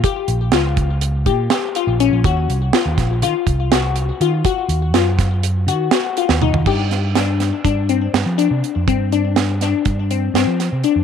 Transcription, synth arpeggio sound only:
X:1
M:9/8
L:1/8
Q:3/8=82
K:Gm
V:1 name="Synth arpeggio sound"
G2 F2 z G G F _D | _G2 F2 F2 G2 F | _G2 F2 z G G F E | G2 D2 D C2 D2 |
C D2 D2 C C2 D |]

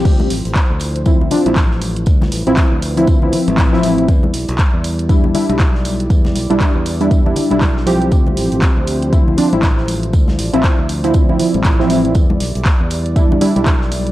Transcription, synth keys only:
X:1
M:4/4
L:1/16
Q:"Swing 16ths" 1/4=119
K:Ddor
V:1 name="Synth keys"
[F,CG]2 z6 [F,CE]2 [F,CD] [F,CE] z4 | z3 [F,CE]2 z2 [F,CE]2 [F,CE]4 [F,CE]3 | z8 [G,DE]2 [G,DE] [G,DE] z4 | z3 [G,DE]2 z2 [G,DE]2 [G,DE]2 [G,DE] z2 [F,CG]2- |
[F,CG]8 [F,CE]2 [F,CD] [F,CE] z4 | z3 [F,CE]2 z2 [F,CE]2 [F,CE]4 [F,CE]3 | z8 [G,DE]2 [G,DE] [G,DE] z4 |]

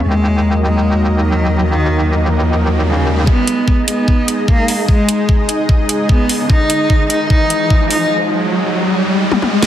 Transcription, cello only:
X:1
M:4/4
L:1/16
Q:"Swing 16ths" 1/4=149
K:G#m
V:1 name="Cello"
G,6 G,6 F,3 z | D,6 z6 C,3 z | B,6 B,6 A,3 z | G,6 z6 B,3 z |
D6 D2 D6 D2 | z16 |]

